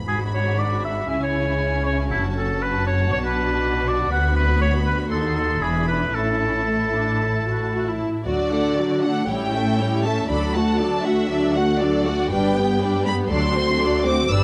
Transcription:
0.00 1.06 B5 soft
0.08 1.06 G#1 soft
0.08 1.06 G#2 soft
0.08 1.07 D4 soft
0.08 1.06 F#4 soft
0.08 0.19 G#4 soft
0.34 0.60 C#5 soft
0.59 0.84 D5 soft
0.85 1.09 E5 soft
1.10 2.10 C#2 soft
1.10 2.10 C#3 soft
1.10 3.08 C#4 soft
1.10 2.08 E4 soft
1.10 1.22 E5 medium
1.10 2.08 G#5 soft
1.23 1.85 C#5 medium
1.86 1.97 C#5 medium
2.11 3.12 F#1 soft
2.11 3.12 F#2 soft
2.11 2.23 E4 soft
2.11 5.57 F#4 soft
2.11 4.08 A5 soft
2.36 2.63 A4 soft
2.62 2.86 B4 soft
2.87 3.12 C#5 medium
3.12 4.11 B1 soft
3.12 4.11 B2 soft
3.12 4.08 D4 soft
3.12 3.18 C#5 medium
3.25 3.90 B4 medium
3.88 4.11 D5 medium
4.11 5.08 D2 soft
4.11 5.09 D2 soft
4.11 5.07 B3 soft
4.11 4.35 F#5 medium
4.11 5.07 B5 soft
4.36 4.60 B4 medium
4.61 4.73 C#5 medium
4.86 4.97 B4 soft
5.10 5.61 D#2 soft
5.10 5.58 D#4 soft
5.10 5.36 A4 medium
5.10 5.58 C6 soft
5.37 5.63 A4 soft
5.61 6.13 E1 soft
5.61 6.13 E2 soft
5.61 6.11 D4 soft
5.61 8.02 E4 soft
5.61 5.87 G#4 soft
5.61 6.10 B5 soft
5.88 6.16 B4 soft
6.14 8.02 A1 soft
6.14 8.02 A2 soft
6.14 6.59 C#4 soft
6.14 8.01 A4 soft
6.14 8.02 A5 soft
6.68 6.93 A3 soft
6.95 7.22 D4 soft
7.22 7.48 E4 soft
7.48 7.72 F#4 soft
7.73 7.87 F#4 soft
7.87 8.27 E4 soft
8.26 8.74 D2 soft
8.26 9.24 D3 soft
8.26 8.51 F#3 soft
8.26 9.25 D4 soft
8.26 8.51 F#4 soft
8.26 9.24 F#4 soft
8.26 8.51 F#4 soft
8.26 8.51 D5 soft
8.26 8.99 D5 medium
8.52 8.78 A3 soft
8.52 8.78 D4 soft
8.52 8.78 A4 soft
8.52 8.78 F#5 soft
8.78 9.03 F#3 soft
8.78 9.03 F#4 soft
8.78 9.04 F#4 soft
8.78 9.04 D5 soft
9.03 9.29 A3 soft
9.03 9.29 D4 soft
9.03 9.29 A4 soft
9.03 9.28 F#5 soft
9.03 9.29 F#5 soft
9.28 9.76 A1 soft
9.28 10.30 A2 soft
9.28 9.52 G3 soft
9.28 10.26 C#4 soft
9.28 10.26 E4 soft
9.28 9.52 E4 soft
9.28 9.52 G4 soft
9.28 9.52 C#5 soft
9.28 10.05 G5 medium
9.53 9.79 A3 soft
9.53 9.79 C#4 soft
9.53 9.79 A4 soft
9.53 9.79 E5 soft
9.79 10.05 G3 soft
9.79 10.05 E4 soft
9.79 10.05 G4 soft
9.79 10.05 C#5 soft
10.04 10.30 A3 soft
10.04 10.30 C#4 soft
10.04 10.29 A4 soft
10.04 10.30 E5 soft
10.04 10.29 A5 soft
10.29 10.76 D2 soft
10.29 12.28 D2 soft
10.29 10.53 F#3 soft
10.29 10.53 D4 soft
10.29 12.28 D4 soft
10.29 12.28 F#4 soft
10.29 10.53 A4 soft
10.29 10.53 D5 soft
10.29 10.54 B5 medium
10.54 10.80 A3 soft
10.54 10.80 F#4 soft
10.54 10.80 F#5 soft
10.54 11.05 A5 soft
10.80 11.05 F#3 soft
10.80 11.05 D4 soft
10.80 11.05 A4 soft
10.80 11.05 D5 soft
11.04 11.30 A3 soft
11.04 11.30 F#4 soft
11.04 11.55 E5 medium
11.04 11.30 F#5 soft
11.29 11.53 F#3 soft
11.29 11.53 D4 soft
11.29 11.53 A4 soft
11.29 11.53 D5 soft
11.55 11.80 A3 soft
11.55 11.80 F#4 soft
11.55 11.80 F#5 soft
11.80 12.06 F#3 soft
11.80 12.06 D4 soft
11.80 12.06 A4 soft
11.80 12.06 D5 soft
11.80 12.32 D5 medium
12.06 12.32 A3 soft
12.06 12.32 F#4 soft
12.06 12.32 F#5 soft
12.31 12.78 G1 soft
12.31 13.29 G2 soft
12.31 12.56 G3 soft
12.31 13.27 B3 soft
12.31 12.56 D4 soft
12.31 13.27 G4 soft
12.31 12.55 B4 soft
12.31 12.55 D5 soft
12.31 13.05 G5 medium
12.57 12.82 B3 soft
12.57 12.82 G4 soft
12.57 12.80 B4 soft
12.81 13.07 G3 soft
12.81 13.07 D4 soft
12.81 13.05 B4 soft
12.81 13.06 D5 soft
13.06 13.32 B3 soft
13.06 13.31 G4 soft
13.06 13.31 B4 soft
13.06 13.14 B5 medium
13.31 14.30 D2 soft
13.31 13.77 D2 soft
13.31 13.55 F#3 soft
13.31 14.27 A3 soft
13.31 13.55 D4 soft
13.31 14.27 F#4 soft
13.31 13.54 A4 soft
13.31 13.54 D5 soft
13.31 14.04 C6 medium
13.56 13.81 A3 soft
13.56 13.81 C4 soft
13.56 13.81 F#4 soft
13.56 13.81 C5 soft
13.81 14.06 F#3 soft
13.81 14.06 D4 soft
13.81 14.06 A4 soft
13.81 14.06 D5 soft
14.05 14.31 A3 soft
14.05 14.31 C4 soft
14.05 14.30 F#4 soft
14.05 14.30 C5 soft
14.05 14.30 D6 medium
14.30 14.44 G1 soft
14.30 14.44 G2 soft
14.30 14.44 G3 soft
14.30 14.44 B3 medium
14.30 14.44 D4 soft
14.30 14.44 G4 medium
14.30 14.44 B4 soft
14.30 14.44 D5 soft
14.30 14.44 E6 medium

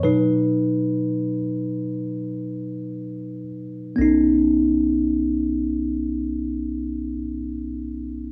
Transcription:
0.03 1.40 B2 soft
0.03 1.40 F#3 soft
0.03 1.41 D#4 soft
0.03 3.42 B4 medium
3.96 7.15 B1 medium
3.96 7.12 B3 soft
3.96 7.15 C#4 soft
4.01 7.18 D#4 medium

